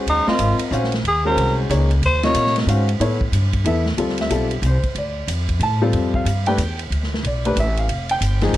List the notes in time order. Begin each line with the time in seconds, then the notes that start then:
Already playing: G#3 C#4 F#4 C5
0.06 D#2 D#4, ride
0.27 C4 F4 A#4 D#5, muted upright bass stroke, snare
0.39 G#1, hi-hat pedal, ride
0.59 ride
0.71 A#1 C#4 F#4 C5 F5, hi-hat pedal
0.84 snare
0.92 snare, ride
1.04 D#2, ride
1.08 G#4
1.25 G#3 C#4 F#4 A#4 C5
1.36 C2, ride
1.69 C#2 A#3 D#4 G#4 C#5, hi-hat pedal, ride
1.91 ride
2.02 D#2, ride
2.06 C5
2.23 C3 F4 A#4 C#5 D#5, snare, ride
2.34 A#2, hi-hat pedal, ride
2.46 snare
2.56 snare, ride
2.67 G#2 C#4 F#4 C5 F5, hi-hat pedal, ride
2.89 ride
3.00 A2 B3 E4 A4 C#5, ride
3.21 kick
3.32 G2, hi-hat pedal, ride
3.53 kick, ride
3.64 E2 B3 E4 A4 E5, ride
3.86 snare
3.97 D2 G3 C4 F4 A4, ride
4.09 snare
4.18 E5, snare, ride
4.30 B1 G3 C4 F4 A4, hi-hat pedal, ride
4.51 ride
4.62 C2, hi-hat pedal, ride
4.66 C5
4.83 kick, ride
4.95 D2 D5, ride
5.28 F2, hi-hat pedal, ride
5.49 kick, ride
5.60 A2 A5, ride
5.82 G3 C4 F4 A4
5.93 F2, ride
6.14 F5, kick
6.25 G2, hi-hat pedal, ride
6.46 A3 D4 G4 B4 G5, ride
6.58 E2, hi-hat pedal, ride
6.79 ride
6.90 D2, ride
7.03 snare
7.14 snare
7.23 B1 D5, ride
7.45 A3 D4 G4 B4, ride
7.56 A1 E5, hi-hat pedal, ride
7.77 F5, ride
7.88 F1, ride
8.09 G5, ride
8.21 G1, hi-hat pedal, ride
8.41 F3 A#3 D#4 G#4, snare, ride
8.53 G#1, hi-hat pedal, ride